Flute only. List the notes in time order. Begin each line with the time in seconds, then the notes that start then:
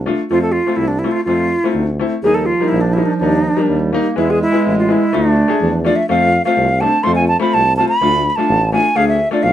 0.30 F4
0.42 A4
0.52 F4
0.76 E4
0.88 D4
0.99 E4
1.11 F4
1.24 F4
2.23 G#4
2.34 A4
2.46 F4
2.68 E4
2.81 D4
2.93 E4
3.05 D4
3.17 D4
4.18 E4
4.30 G#4
4.42 E4
4.79 F4
4.92 E4
5.14 D4
5.85 D5
5.96 E5
6.09 F5
6.45 F5
6.81 A5
7.03 C6
7.15 G#5
7.28 A5
7.41 B5
7.54 A5
7.77 A5
7.88 B5
8.30 B5
8.36 A5
8.73 G#5
8.96 F5
9.08 E5
9.32 D5
9.43 F5